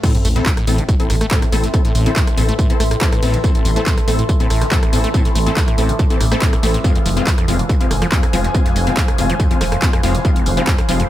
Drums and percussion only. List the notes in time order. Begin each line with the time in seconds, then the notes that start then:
0.03 kick, closed hi-hat, crash, tambourine
0.15 closed hi-hat
0.25 open hi-hat, tambourine
0.36 snare, closed hi-hat
0.46 kick, snare, clap, closed hi-hat, tambourine
0.57 cross-stick, closed hi-hat
0.67 open hi-hat, tambourine
0.78 closed hi-hat
0.89 kick, closed hi-hat, tambourine
1.00 closed hi-hat
1.10 cross-stick, open hi-hat, tambourine
1.21 cross-stick, snare, closed hi-hat
1.31 kick, snare, clap, closed hi-hat, tambourine
1.42 cross-stick, closed hi-hat
1.52 open hi-hat, tambourine
1.64 snare, closed hi-hat
1.74 kick, closed hi-hat, tambourine
1.85 snare, closed hi-hat
1.95 open hi-hat, tambourine
2.06 snare, closed hi-hat
2.16 kick, snare, clap, closed hi-hat, tambourine
2.27 cross-stick, closed hi-hat
2.37 open hi-hat, tambourine
2.49 closed hi-hat
2.59 kick, closed hi-hat, tambourine
2.70 closed hi-hat
2.80 cross-stick, open hi-hat, tambourine
2.91 cross-stick, closed hi-hat
3.01 kick, snare, clap, closed hi-hat, tambourine
3.12 cross-stick, closed hi-hat
3.23 open hi-hat
3.34 closed hi-hat
3.44 kick, closed hi-hat, tambourine
3.55 closed hi-hat
3.65 open hi-hat, tambourine
3.76 snare, closed hi-hat
3.86 kick, snare, clap, closed hi-hat, tambourine
3.98 cross-stick, closed hi-hat
4.08 open hi-hat, tambourine
4.19 closed hi-hat
4.29 kick, closed hi-hat, tambourine
4.40 closed hi-hat
4.50 cross-stick, open hi-hat, tambourine
4.61 cross-stick, snare, closed hi-hat
4.72 kick, snare, clap, closed hi-hat, tambourine
4.83 cross-stick, closed hi-hat
4.93 open hi-hat, tambourine
5.04 snare, closed hi-hat
5.14 kick, closed hi-hat, tambourine
5.25 snare, closed hi-hat
5.35 open hi-hat, tambourine
5.47 snare, closed hi-hat
5.57 kick, snare, clap, closed hi-hat, tambourine
5.68 cross-stick, closed hi-hat
5.78 open hi-hat, tambourine
5.89 closed hi-hat
5.99 kick, closed hi-hat, tambourine
6.10 closed hi-hat
6.21 cross-stick, open hi-hat, tambourine
6.32 cross-stick, closed hi-hat
6.42 kick, snare, clap, closed hi-hat, tambourine
6.53 cross-stick, closed hi-hat
6.63 open hi-hat
6.74 closed hi-hat
6.84 kick, closed hi-hat, tambourine
6.95 closed hi-hat
7.06 open hi-hat, tambourine
7.17 snare, closed hi-hat
7.27 kick, snare, clap, closed hi-hat, tambourine
7.38 cross-stick, closed hi-hat
7.48 open hi-hat, tambourine
7.59 closed hi-hat
7.69 kick, closed hi-hat, tambourine
7.81 closed hi-hat
7.91 cross-stick, open hi-hat, tambourine
8.02 cross-stick, snare, closed hi-hat
8.12 kick, snare, clap, closed hi-hat, tambourine
8.23 cross-stick, closed hi-hat
8.33 open hi-hat, tambourine
8.44 snare, closed hi-hat
8.54 kick, closed hi-hat, tambourine
8.66 snare, closed hi-hat
8.76 open hi-hat, tambourine
8.87 snare, closed hi-hat
8.97 kick, snare, clap, closed hi-hat, tambourine
9.08 cross-stick, closed hi-hat
9.18 open hi-hat, tambourine
9.30 closed hi-hat
9.40 kick, closed hi-hat, tambourine
9.51 closed hi-hat
9.61 cross-stick, open hi-hat, tambourine
9.72 cross-stick, closed hi-hat
9.82 kick, snare, clap, closed hi-hat, tambourine
9.93 cross-stick, closed hi-hat
10.03 open hi-hat
10.15 closed hi-hat
10.25 kick, closed hi-hat, tambourine
10.36 closed hi-hat
10.46 open hi-hat, tambourine
10.57 snare, closed hi-hat
10.67 kick, snare, clap, closed hi-hat, tambourine
10.78 cross-stick, closed hi-hat
10.89 open hi-hat, tambourine
11.00 closed hi-hat